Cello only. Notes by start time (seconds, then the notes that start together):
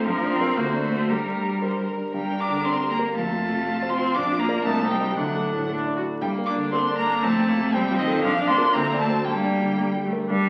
0.07 F3
0.32 C4
0.57 A#3
0.83 A3
1.09 G3
2.14 G3
2.40 D4
2.65 C4
2.91 A#3
3.16 A3
3.91 C4
4.16 D4
4.41 A#3
4.65 A3
4.91 G3
5.17 F#3
6.22 G3
6.48 D4
6.73 C4
6.98 A#3
7.24 A3
7.74 G3
7.99 D#3
8.24 F3
8.49 C4
8.75 A#3
9.00 A3
9.26 G3
10.30 G3